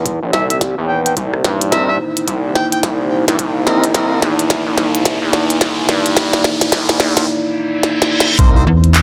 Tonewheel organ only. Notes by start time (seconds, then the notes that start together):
1.72 C4 D#4 E4 A#4
3.66 C4 D#4 E4 A#4
3.95 C4 D#4 E4 A#4
8.39 C4 D#4 E4 A#4